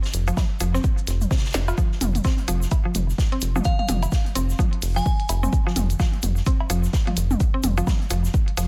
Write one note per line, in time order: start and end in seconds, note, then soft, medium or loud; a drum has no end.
0.03 snare medium
0.03 shaker medium
0.13 0.32 F1 loud
0.13 closed hi-hat medium
0.13 shaker medium
0.27 0.31 F3 loud
0.27 shaker medium
0.27 shaker soft
0.37 kick loud
0.37 snare loud
0.37 high tom soft
0.37 cowbell medium
0.37 shaker medium
0.37 shaker soft
0.60 0.79 F1 medium
0.60 0.68 F3 medium
0.60 closed hi-hat medium
0.60 shaker medium
0.73 0.78 C4 medium
0.73 snare soft
0.73 shaker medium
0.84 kick loud
0.84 shaker medium
0.84 shaker soft
0.98 shaker medium
1.07 1.26 F1 loud
1.07 snare soft
1.07 closed hi-hat medium
1.07 shaker medium
1.21 high tom soft
1.21 shaker soft
1.21 shaker medium
1.31 1.34 C3 medium
1.31 kick loud
1.31 snare medium
1.31 shaker soft
1.31 shaker medium
1.38 snare medium
1.38 shaker medium
1.45 snare medium
1.45 shaker medium
1.50 snare medium
1.50 shaker medium
1.54 1.72 F1 medium
1.54 snare medium
1.54 snare loud
1.54 closed hi-hat medium
1.54 shaker medium
1.68 1.72 F4 medium
1.68 cowbell medium
1.68 shaker soft
1.78 1.85 F3 medium
1.78 kick loud
1.78 shaker medium
1.78 shaker soft
1.92 snare soft
2.01 2.19 F1 loud
2.01 closed hi-hat medium
2.01 mid tom medium
2.01 shaker medium
2.15 closed hi-hat soft
2.15 high tom soft
2.15 shaker medium
2.24 2.29 C4 medium
2.24 kick loud
2.24 snare loud
2.24 shaker medium
2.24 shaker soft
2.38 closed hi-hat soft
2.48 2.66 F1 medium
2.48 2.53 F3 loud
2.48 closed hi-hat medium
2.48 shaker medium
2.62 snare soft
2.62 shaker medium
2.71 kick loud
2.71 closed hi-hat soft
2.71 cowbell medium
2.71 shaker medium
2.71 shaker soft
2.85 2.90 F3 medium
2.94 3.13 F1 loud
2.94 closed hi-hat medium
2.94 high tom soft
2.94 shaker medium
3.09 snare soft
3.09 shaker soft
3.18 kick loud
3.18 snare loud
3.18 shaker medium
3.18 shaker soft
3.32 3.36 C4 medium
3.32 closed hi-hat soft
3.41 3.60 F1 medium
3.41 closed hi-hat medium
3.41 shaker medium
3.56 3.59 F3 loud
3.56 mid tom medium
3.56 shaker medium
3.64 3.74 F5 medium
3.64 kick loud
3.64 shaker medium
3.64 shaker soft
3.79 3.85 F5 medium
3.79 high tom soft
3.89 4.07 F1 loud
3.89 3.96 F3 medium
3.89 closed hi-hat loud
3.89 mid tom medium
3.89 shaker medium
4.03 closed hi-hat soft
4.03 cowbell medium
4.03 shaker soft
4.11 kick loud
4.11 snare loud
4.11 shaker soft
4.11 shaker medium
4.26 closed hi-hat soft
4.35 4.54 F1 medium
4.35 4.40 C4 medium
4.35 closed hi-hat medium
4.35 shaker medium
4.50 snare soft
4.50 shaker medium
4.59 4.64 F3 loud
4.59 kick loud
4.59 high tom soft
4.59 shaker soft
4.59 shaker medium
4.73 closed hi-hat soft
4.82 5.01 F1 medium
4.82 snare soft
4.82 closed hi-hat medium
4.82 open hi-hat medium
4.82 shaker medium
4.96 5.01 F3 medium
4.96 5.61 G#5 medium
4.96 snare soft
4.96 shaker medium
5.06 kick loud
5.06 shaker soft
5.20 closed hi-hat soft
5.28 5.47 F1 medium
5.28 closed hi-hat loud
5.28 cowbell medium
5.28 shaker medium
5.43 5.46 C4 medium
5.43 high tom soft
5.43 shaker medium
5.53 kick loud
5.53 shaker soft
5.53 shaker medium
5.67 5.70 F3 loud
5.67 snare soft
5.76 5.94 F1 loud
5.76 closed hi-hat loud
5.76 mid tom medium
5.76 shaker medium
5.90 closed hi-hat soft
5.90 shaker medium
5.99 6.07 F3 medium
5.99 kick loud
5.99 snare loud
5.99 shaker soft
5.99 shaker medium
6.13 closed hi-hat soft
6.23 6.41 F1 medium
6.23 closed hi-hat medium
6.23 high tom soft
6.23 shaker medium
6.36 snare soft
6.36 shaker medium
6.45 6.51 C4 medium
6.45 kick loud
6.45 closed hi-hat soft
6.45 shaker soft
6.45 shaker medium
6.60 cowbell medium
6.70 6.88 F1 loud
6.70 6.75 F3 loud
6.70 closed hi-hat medium
6.70 shaker medium
6.84 snare soft
6.84 shaker medium
6.93 kick loud
6.93 snare loud
6.93 shaker medium
6.93 shaker soft
7.07 7.12 F3 medium
7.07 closed hi-hat soft
7.07 high tom soft
7.17 7.35 F1 medium
7.17 closed hi-hat medium
7.17 shaker medium
7.31 mid tom medium
7.31 shaker medium
7.40 kick loud
7.40 shaker medium
7.40 shaker soft
7.54 7.57 C4 medium
7.63 7.82 F1 loud
7.63 closed hi-hat medium
7.63 mid tom medium
7.63 shaker medium
7.78 7.81 F3 loud
7.78 closed hi-hat soft
7.78 shaker medium
7.87 kick loud
7.87 snare loud
7.87 high tom soft
7.87 cowbell medium
7.87 shaker soft
7.87 shaker medium
8.01 closed hi-hat soft
8.10 8.29 F1 medium
8.10 8.18 F3 medium
8.10 closed hi-hat medium
8.10 shaker loud
8.10 shaker medium
8.24 snare soft
8.24 shaker medium
8.33 kick loud
8.33 shaker medium
8.33 shaker soft
8.48 closed hi-hat soft
8.57 8.68 F1 loud
8.57 8.65 F3 loud
8.57 snare soft
8.57 closed hi-hat medium
8.57 open hi-hat medium
8.57 shaker medium